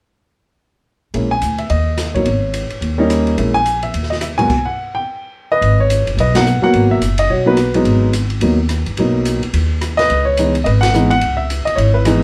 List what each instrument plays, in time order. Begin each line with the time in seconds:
1.14 upright bass A#1, grand piano G#3 A#3 C#4 E4, ride
1.31 grand piano G#5
1.42 upright bass D2, hi-hat pedal, ride
1.58 grand piano E5, ride
1.70 upright bass D#2, grand piano D#5, ride
1.98 cross-stick, snare, hi-hat pedal, ride
2.14 grand piano F#3 A#3 B3 D#4 C#5, kick, ride
2.25 upright bass G#1, ride
2.54 hi-hat pedal, ride
2.70 muted upright bass stroke, ride
2.81 upright bass D#2, ride
2.98 grand piano G3 A#3 C#4 D#4
3.10 cross-stick, hi-hat pedal, ride
3.27 ride
3.37 upright bass A#1, grand piano G#3 A#3 C#4 E4, ride
3.54 grand piano G#5
3.66 hi-hat pedal, ride
3.82 grand piano E5, ride
3.94 upright bass D#2, ride
4.03 snare
4.10 grand piano D#5, snare
4.21 grand piano E5, cross-stick, hi-hat pedal, ride
4.38 grand piano G#2 F#3 A#3 B3 F#4 G#5, ride
4.50 kick, crash
4.65 grand piano F#5
4.95 grand piano G5
5.52 grand piano B4 D#5
5.61 upright bass G#1, ride
5.80 grand piano C#5
5.90 hi-hat pedal, ride
6.07 upright bass F#1, ride
6.17 upright bass B1, grand piano B4 D#5, ride
6.35 grand piano F#3 A#3 B3 D#4 F#5, snare, ride
6.46 hi-hat pedal
6.61 grand piano F#3 A#3 B3 F#4 F#5, muted upright bass stroke
6.73 upright bass G#1, ride
6.91 grand piano E5
7.01 upright bass F#1, hi-hat pedal, ride
7.18 grand piano D#5, ride
7.28 upright bass B1, grand piano F#4 C#5
7.46 grand piano F#3 A#3 B3 D#4 F#4 B4
7.57 cross-stick, hi-hat pedal, ride
7.74 grand piano F#3 G#3 B3 D#4, ride
7.85 upright bass G#1, ride
8.13 hi-hat pedal, ride
8.30 ride
8.40 upright bass D#2, grand piano F#3 A#3 B3 D#4, ride
8.69 cross-stick, hi-hat pedal, ride
8.86 upright bass G1, ride
8.97 upright bass B1, grand piano F#3 A#3 B3 D#4, ride
9.25 hi-hat pedal, ride
9.43 muted upright bass stroke, ride
9.53 upright bass D#2, ride
9.81 cross-stick, hi-hat pedal, ride
9.97 grand piano B4 D#5, snare, ride
10.10 upright bass C#2, ride
10.25 grand piano C#5
10.37 grand piano E3 G#3 B3 D#4, hi-hat pedal, ride
10.55 ride
10.64 upright bass G#1, grand piano B4 D#5, ride
10.81 grand piano F#5, snare, ride
10.94 grand piano E3 G#3 B3 D#4, hi-hat pedal
11.10 grand piano F#5, ride
11.21 upright bass C#2, ride
11.37 grand piano E5
11.50 hi-hat pedal, ride
11.65 grand piano D#5, muted upright bass stroke, ride
11.75 upright bass G#1, grand piano E4 C#5, ride
11.94 grand piano E4 B4
12.05 grand piano E3 G#3 B3 D#4, cross-stick, hi-hat pedal, ride